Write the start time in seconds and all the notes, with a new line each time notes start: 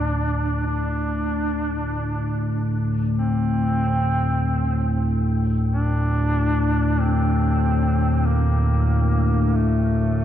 Already playing: D2 A2 D4
0.66 D4
3.18 C4
5.72 D4
7.01 C4
8.26 A#3
9.55 A3